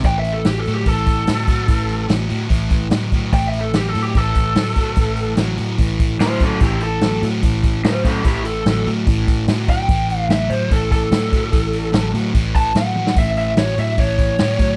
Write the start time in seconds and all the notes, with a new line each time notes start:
0.04 A1 A2 E3 G5, kick, open hi-hat
0.19 E5
0.24 open hi-hat
0.33 A4
0.45 A1 A2 F#3 G4, snare, open hi-hat
0.60 A4
0.65 A2 F#3, open hi-hat
0.75 G4
0.85 A1 A2 E3 A4, kick, open hi-hat
1.06 kick, open hi-hat
1.27 A2 F#3, snare, open hi-hat
1.47 A2 F#3, kick, open hi-hat
1.68 A1 A2 E3, kick, open hi-hat
1.89 open hi-hat
2.08 A1 A2 F#3, snare, open hi-hat
2.28 A2 F#3, open hi-hat
2.49 A1 A2 E3, kick, open hi-hat
2.70 kick, open hi-hat
2.91 A2 F#3, snare, open hi-hat
3.12 A2 F#3, kick, open hi-hat
3.33 A1 A2 E3 G5, kick, open hi-hat
3.48 E5
3.53 open hi-hat
3.61 A4
3.73 A1 A2 F#3 G4, snare, open hi-hat
3.89 A4
3.95 A2 F#3, open hi-hat
4.02 G4
4.15 A1 A2 E3 A4, kick, open hi-hat
4.35 kick, open hi-hat
4.55 A2 F#3, snare, open hi-hat
4.76 A2 F#3, kick, open hi-hat
4.96 A1 A2 E3, kick, open hi-hat
5.17 open hi-hat
5.37 A1 A2 F#3, snare, open hi-hat
5.58 A2 F#3, open hi-hat
5.78 A1 A2 E3, kick, open hi-hat
6.00 kick, open hi-hat
6.20 A2 F#3 E4 C5, snare, open hi-hat
6.40 A2 F#3 C#4 A4, kick, open hi-hat
6.60 A1 A2 E3 E4 G4, kick, open hi-hat
6.80 A4, open hi-hat
7.01 A1 A2 F#3, snare, open hi-hat
7.23 A2 F#3, open hi-hat
7.43 A1 A2 E3, kick, open hi-hat
7.63 kick, open hi-hat
7.84 A2 F#3 E4 C5, snare, open hi-hat
8.04 A2 F#3 C#4 A4, kick, open hi-hat
8.24 A1 A2 E3 E4 G4, kick, open hi-hat
8.45 A4, open hi-hat
8.66 A1 A2 F#3, snare, open hi-hat
8.87 A2 F#3, open hi-hat
9.07 A1 A2 E3, kick, open hi-hat
9.28 kick, open hi-hat
9.48 A2 F#3, snare, open hi-hat
9.68 A2 F#3 G5, kick, open hi-hat
9.89 A1 A2 E3, kick, open hi-hat
10.10 open hi-hat
10.18 F5
10.29 A1 A2 F#3 E5, snare, open hi-hat
10.50 A2 F#3 C5, open hi-hat
10.71 A1 A2 E3 A4, kick, open hi-hat
10.91 A4, kick, open hi-hat
11.11 A2 F#3, snare, open hi-hat
11.32 A2 F#3, kick, open hi-hat
11.51 A1 A2 E3, kick, open hi-hat
11.73 open hi-hat
11.92 A1 A2 F#3, snare, open hi-hat
12.14 A2 F#3, open hi-hat
12.34 A1 A2 E3, kick, open hi-hat
12.55 A5, kick, open hi-hat
12.75 A2 F#3 F#5, snare, open hi-hat
12.96 A2 F#3, high tom
13.07 snare
13.16 A1 A2 E3 E5, kick, open hi-hat
13.36 E5, open hi-hat
13.57 A1 A2 F#3 C#5, snare, open hi-hat
13.77 A2 F#3 E5, open hi-hat
13.98 A1 A2 E3 C#5, kick, open hi-hat
14.19 kick, open hi-hat
14.39 A2 F#3, snare, open hi-hat
14.58 A2 F#3, kick, open hi-hat